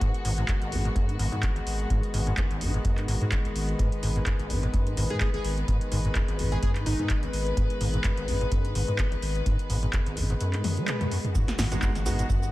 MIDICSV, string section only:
0, 0, Header, 1, 2, 480
1, 0, Start_track
1, 0, Key_signature, 5, "minor"
1, 0, Tempo, 472441
1, 12, Time_signature, 4, 2, 24, 8
1, 12716, End_track
2, 0, Start_track
2, 0, Title_t, "String section"
2, 0, Program_c, 0, 48
2, 0, Note_on_c, 0, 51, 80
2, 0, Note_on_c, 0, 56, 76
2, 0, Note_on_c, 0, 59, 72
2, 0, Note_on_c, 0, 66, 90
2, 3838, Note_off_c, 0, 66, 0
2, 3853, Note_on_c, 0, 71, 91
2, 11491, Note_off_c, 0, 51, 0
2, 11491, Note_off_c, 0, 56, 0
2, 11491, Note_off_c, 0, 59, 0
2, 11518, Note_off_c, 0, 71, 0
2, 11533, Note_on_c, 0, 56, 75
2, 11533, Note_on_c, 0, 59, 77
2, 11534, Note_on_c, 0, 51, 82
2, 11534, Note_on_c, 0, 66, 94
2, 12716, Note_off_c, 0, 51, 0
2, 12716, Note_off_c, 0, 56, 0
2, 12716, Note_off_c, 0, 59, 0
2, 12716, Note_off_c, 0, 66, 0
2, 12716, End_track
0, 0, End_of_file